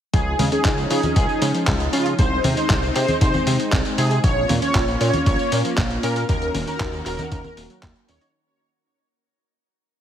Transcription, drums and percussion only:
0.14 kick loud
0.14 closed hi-hat medium
0.14 tambourine soft
0.39 open hi-hat loud
0.39 tambourine medium
0.39 high conga medium
0.52 closed hi-hat medium
0.52 tambourine soft
0.65 kick loud
0.65 clap loud
0.65 closed hi-hat medium
0.65 tambourine soft
0.78 tambourine soft
0.90 open hi-hat loud
0.90 tambourine medium
1.03 closed hi-hat medium
1.03 tambourine soft
1.03 high conga medium
1.16 kick loud
1.16 closed hi-hat medium
1.16 tambourine soft
1.29 tambourine soft
1.42 open hi-hat loud
1.42 tambourine medium
1.55 closed hi-hat medium
1.55 tambourine soft
1.67 kick loud
1.67 clap loud
1.67 closed hi-hat medium
1.67 tambourine soft
1.80 closed hi-hat soft
1.80 tambourine soft
1.93 open hi-hat loud
1.93 tambourine medium
2.06 closed hi-hat medium
2.06 tambourine soft
2.19 kick loud
2.19 closed hi-hat medium
2.19 tambourine soft
2.44 open hi-hat loud
2.44 tambourine medium
2.44 high conga medium
2.57 closed hi-hat medium
2.57 tambourine soft
2.70 kick loud
2.70 clap loud
2.70 closed hi-hat medium
2.70 tambourine soft
2.83 tambourine soft
2.96 clap soft
2.96 open hi-hat loud
2.96 tambourine medium
3.08 closed hi-hat medium
3.08 tambourine soft
3.08 high conga medium
3.21 kick loud
3.21 closed hi-hat medium
3.21 tambourine soft
3.34 tambourine soft
3.34 high conga medium
3.47 open hi-hat loud
3.47 tambourine medium
3.60 closed hi-hat medium
3.60 tambourine soft
3.72 kick loud
3.72 clap loud
3.72 closed hi-hat medium
3.72 tambourine soft
3.85 closed hi-hat soft
3.85 tambourine soft
3.98 open hi-hat loud
3.98 tambourine medium
4.11 closed hi-hat medium
4.11 tambourine soft
4.24 kick loud
4.24 closed hi-hat medium
4.24 tambourine soft
4.49 open hi-hat loud
4.49 tambourine medium
4.49 high conga medium
4.62 closed hi-hat medium
4.62 tambourine soft
4.75 kick loud
4.75 clap loud
4.75 closed hi-hat medium
4.75 tambourine soft
4.88 tambourine soft
5.01 open hi-hat loud
5.01 tambourine medium
5.13 closed hi-hat medium
5.13 tambourine soft
5.13 high conga medium
5.26 kick loud
5.26 closed hi-hat medium
5.26 tambourine soft
5.39 tambourine soft
5.52 open hi-hat loud
5.52 tambourine medium
5.65 closed hi-hat medium
5.65 tambourine soft
5.78 kick loud
5.78 clap loud
5.78 closed hi-hat medium
5.78 tambourine soft
5.91 closed hi-hat soft
5.91 tambourine soft
6.03 open hi-hat loud
6.03 tambourine medium
6.16 closed hi-hat medium
6.16 tambourine soft
6.29 kick loud
6.29 closed hi-hat medium
6.29 tambourine soft
6.42 closed hi-hat soft
6.55 open hi-hat loud
6.55 tambourine medium
6.55 high conga medium
6.67 closed hi-hat medium
6.67 tambourine soft
6.80 kick loud
6.80 clap loud
6.80 closed hi-hat medium
6.80 tambourine soft
6.93 tambourine soft
7.06 clap soft
7.06 open hi-hat loud
7.06 tambourine medium
7.19 closed hi-hat medium
7.19 tambourine soft
7.19 high conga medium
7.32 kick loud
7.32 closed hi-hat medium
7.32 tambourine soft
7.44 tambourine soft
7.44 high conga medium
7.57 open hi-hat loud
7.57 tambourine medium
7.70 closed hi-hat medium
7.70 tambourine soft
7.83 kick loud
7.83 clap loud
7.83 closed hi-hat medium
7.83 tambourine soft
7.96 closed hi-hat soft
7.96 tambourine soft
8.09 open hi-hat loud
8.09 tambourine medium
8.21 closed hi-hat medium
8.21 tambourine soft

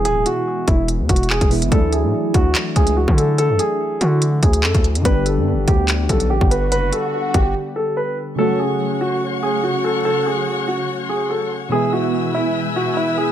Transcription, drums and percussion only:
0.05 closed hi-hat medium
0.26 closed hi-hat medium
0.68 kick loud
0.68 closed hi-hat medium
0.88 closed hi-hat medium
1.09 kick medium
1.09 closed hi-hat medium
1.16 closed hi-hat medium
1.23 closed hi-hat soft
1.30 clap loud
1.41 kick loud
1.41 closed hi-hat medium
1.51 closed hi-hat soft
1.51 open hi-hat medium
1.62 closed hi-hat medium
1.72 kick loud
1.72 closed hi-hat medium
1.93 closed hi-hat medium
2.34 kick loud
2.34 closed hi-hat medium
2.55 clap loud
2.55 closed hi-hat medium
2.76 kick medium
2.76 closed hi-hat medium
2.87 closed hi-hat medium
3.08 kick loud
3.18 closed hi-hat medium
3.38 closed hi-hat medium
3.59 closed hi-hat medium
4.01 closed hi-hat medium
4.22 closed hi-hat medium
4.43 kick medium
4.43 closed hi-hat medium
4.53 closed hi-hat medium
4.63 clap loud
4.75 kick loud
4.75 closed hi-hat medium
4.84 closed hi-hat medium
4.95 closed hi-hat medium
5.05 kick loud
5.05 closed hi-hat medium
5.26 closed hi-hat medium
5.68 kick loud
5.68 closed hi-hat medium
5.88 clap loud
5.88 closed hi-hat medium
6.09 kick medium
6.09 closed hi-hat medium
6.20 closed hi-hat medium
6.41 kick loud
6.51 closed hi-hat medium
6.72 closed hi-hat medium
6.93 closed hi-hat medium
7.34 kick loud
7.34 closed hi-hat medium

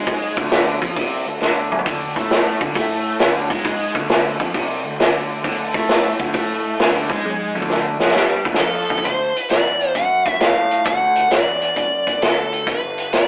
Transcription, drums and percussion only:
0.07 kick loud
0.07 open hi-hat medium
0.37 kick loud
0.51 snare loud
0.51 open hi-hat medium
0.82 kick loud
0.96 kick loud
0.96 open hi-hat medium
1.41 snare medium
1.72 mid tom medium
1.79 floor tom medium
1.86 kick loud
1.86 open hi-hat medium
2.16 kick loud
2.30 snare medium
2.30 open hi-hat medium
2.61 kick loud
2.75 kick loud
2.75 open hi-hat medium
3.19 snare loud
3.19 open hi-hat medium
3.50 kick loud
3.64 kick loud
3.64 open hi-hat medium
3.95 kick loud
4.09 snare loud
4.09 open hi-hat medium
4.40 kick loud
4.54 kick loud
4.54 open hi-hat medium
4.99 snare loud
4.99 open hi-hat medium
5.44 kick loud
5.44 open hi-hat medium
5.74 kick loud
5.89 snare loud
5.89 open hi-hat medium
6.20 kick loud
6.34 kick loud
6.34 open hi-hat medium
6.79 snare loud
6.79 open hi-hat medium
7.10 kick loud
7.25 high tom medium
7.55 high tom medium
7.62 kick medium
7.70 snare medium
8.00 snare medium
8.08 snare medium
8.16 snare medium
8.45 kick medium
8.54 snare medium
8.60 kick medium
8.90 kick loud
8.98 kick medium
9.05 kick medium
9.05 closed hi-hat medium
9.36 closed hi-hat medium
9.50 snare medium
9.50 closed hi-hat medium
9.81 closed hi-hat soft
9.95 kick medium
9.95 closed hi-hat medium
10.26 kick medium
10.26 closed hi-hat medium
10.40 snare loud
10.40 closed hi-hat medium
10.71 closed hi-hat medium
10.86 kick loud
10.86 closed hi-hat medium
11.15 closed hi-hat medium
11.31 snare medium
11.31 closed hi-hat medium
11.61 closed hi-hat medium
11.76 kick medium
11.76 closed hi-hat medium
12.07 kick medium
12.07 closed hi-hat medium
12.22 snare loud
12.22 closed hi-hat medium
12.53 closed hi-hat medium
12.67 kick loud
12.67 closed hi-hat medium
12.98 closed hi-hat medium
13.13 snare medium
13.13 closed hi-hat medium

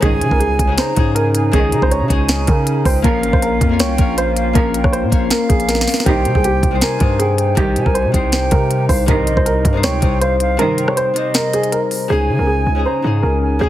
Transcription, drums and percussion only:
0.02 kick loud
0.02 closed hi-hat medium
0.21 closed hi-hat medium
0.31 kick medium
0.41 closed hi-hat medium
0.59 kick medium
0.59 closed hi-hat medium
0.78 snare loud
0.78 closed hi-hat medium
0.96 kick loud
0.96 closed hi-hat medium
1.16 closed hi-hat medium
1.35 closed hi-hat medium
1.53 kick loud
1.53 closed hi-hat medium
1.72 closed hi-hat medium
1.82 kick loud
1.91 closed hi-hat medium
2.10 kick medium
2.10 closed hi-hat medium
2.29 snare loud
2.29 closed hi-hat medium
2.47 kick loud
2.47 closed hi-hat medium
2.67 closed hi-hat medium
2.85 kick loud
2.85 open hi-hat medium
3.04 kick loud
3.04 closed hi-hat medium
3.23 closed hi-hat medium
3.33 kick loud
3.42 closed hi-hat medium
3.61 kick medium
3.61 closed hi-hat medium
3.80 snare loud
3.80 closed hi-hat medium
3.98 kick loud
3.98 closed hi-hat medium
4.18 closed hi-hat medium
4.37 closed hi-hat medium
4.55 kick loud
4.55 closed hi-hat medium
4.74 closed hi-hat medium
4.84 kick loud
4.84 cross-stick medium
4.93 closed hi-hat medium
5.12 kick medium
5.12 closed hi-hat medium
5.30 snare loud
5.30 closed hi-hat medium
5.50 kick loud
5.50 closed hi-hat medium
5.60 closed hi-hat medium
5.69 snare medium
5.69 closed hi-hat medium
5.75 snare medium
5.81 snare medium
5.87 snare medium
5.87 open hi-hat medium
5.94 snare loud
6.00 snare loud
6.06 kick loud
6.06 closed hi-hat medium
6.25 closed hi-hat medium
6.35 kick loud
6.44 closed hi-hat medium
6.63 kick medium
6.63 closed hi-hat medium
6.81 snare loud
6.81 closed hi-hat medium
7.00 kick loud
7.00 closed hi-hat medium
7.20 closed hi-hat medium
7.38 closed hi-hat medium
7.57 kick loud
7.57 closed hi-hat medium
7.76 closed hi-hat medium
7.86 kick medium
7.95 closed hi-hat medium
8.14 kick medium
8.14 closed hi-hat medium
8.32 snare loud
8.32 closed hi-hat medium
8.51 kick loud
8.51 closed hi-hat medium
8.71 closed hi-hat medium
8.89 kick loud
8.89 open hi-hat medium
9.08 kick loud
9.08 closed hi-hat medium
9.27 closed hi-hat medium
9.37 kick loud
9.46 closed hi-hat medium
9.65 kick medium
9.65 closed hi-hat medium
9.83 snare loud
9.83 closed hi-hat medium
10.02 kick loud
10.02 closed hi-hat medium
10.22 closed hi-hat medium
10.40 closed hi-hat medium
10.59 closed hi-hat medium
10.78 closed hi-hat medium
10.88 cross-stick medium
10.97 closed hi-hat medium
11.16 closed hi-hat medium
11.34 snare loud
11.34 closed hi-hat medium
11.53 closed hi-hat medium
11.63 closed hi-hat medium
11.72 closed hi-hat medium
11.91 open hi-hat medium

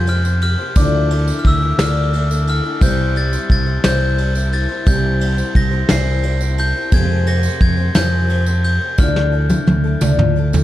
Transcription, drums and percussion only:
0.07 ride medium
0.25 tambourine medium
0.41 ride medium
0.76 kick loud
0.76 ride medium
0.76 tambourine medium
1.10 ride medium
1.28 tambourine medium
1.45 kick medium
1.45 ride medium
1.79 snare loud
1.79 ride loud
1.79 tambourine loud
2.13 ride medium
2.13 tambourine soft
2.31 tambourine medium
2.47 ride medium
2.47 tambourine soft
2.81 kick loud
2.81 ride medium
2.81 tambourine loud
3.16 ride medium
3.33 tambourine medium
3.50 kick medium
3.50 ride medium
3.84 snare loud
3.84 ride medium
3.84 tambourine loud
4.18 ride medium
4.35 tambourine medium
4.52 ride medium
4.86 kick loud
4.86 ride medium
4.86 tambourine loud
5.21 ride medium
5.38 tambourine medium
5.55 kick medium
5.55 ride medium
5.89 snare loud
5.89 ride loud
5.89 tambourine loud
6.23 ride medium
6.41 tambourine medium
6.58 ride medium
6.92 kick loud
6.92 ride medium
6.92 tambourine loud
7.27 ride medium
7.43 tambourine medium
7.60 kick medium
7.60 ride medium
7.95 snare loud
7.95 ride medium
7.95 tambourine loud
8.29 ride medium
8.46 tambourine medium
8.64 ride medium
8.98 kick loud
8.98 snare medium
8.98 tambourine loud
9.16 snare medium
9.50 high tom medium
9.50 tambourine medium
9.67 high tom medium
9.67 tambourine soft
10.01 mid tom loud
10.01 tambourine loud
10.19 mid tom medium
10.53 floor tom loud
10.53 tambourine medium

